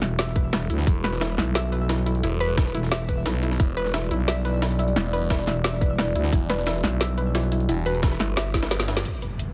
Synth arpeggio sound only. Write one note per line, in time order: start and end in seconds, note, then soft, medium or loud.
0.02 0.18 E4 medium
0.19 0.35 E5 loud
0.36 0.42 B4 medium
0.53 0.69 E4 medium
0.70 0.77 E4 medium
0.87 0.98 E4 medium
1.04 1.20 B4 loud
1.21 1.32 E4 medium
1.38 1.54 E4 medium
1.55 1.71 E5 loud
1.72 1.79 B4 medium
1.89 2.05 E4 medium
2.06 2.13 E4 medium
2.23 2.34 E4 medium
2.40 2.57 B4 loud
2.57 2.68 E4 medium
2.75 2.91 E4 medium
2.92 3.08 E5 loud
3.09 3.15 B4 medium
3.26 3.42 E4 medium
3.43 3.49 E4 medium
3.60 3.71 E4 medium
3.77 3.93 B4 loud
3.94 4.05 E5 medium
4.11 4.27 E4 medium
4.28 4.44 E5 loud
4.45 4.52 B4 medium
4.62 4.78 E4 medium
4.79 4.86 E4 medium
4.96 5.07 E4 medium
5.13 5.29 B4 loud
5.30 5.41 E5 medium
5.47 5.63 E4 medium
5.64 5.81 E5 loud
5.81 5.88 B4 medium
5.98 6.14 E4 medium
6.15 6.22 E4 medium
6.33 6.44 E4 medium
6.50 6.66 B4 loud
6.67 6.78 E5 medium
6.84 7.00 E4 medium
7.01 7.17 E5 loud
7.18 7.24 B4 medium
7.35 7.51 E4 medium
7.52 7.58 E4 medium
7.69 7.80 E4 medium
7.86 8.02 B4 loud
8.03 8.14 E5 medium
8.20 8.36 E4 medium
8.37 8.53 E5 loud
8.54 8.65 E4 loud
8.71 8.82 B4 medium
8.88 8.99 E4 medium
9.05 9.16 E4 medium
9.22 9.38 B4 loud
9.39 9.50 E5 medium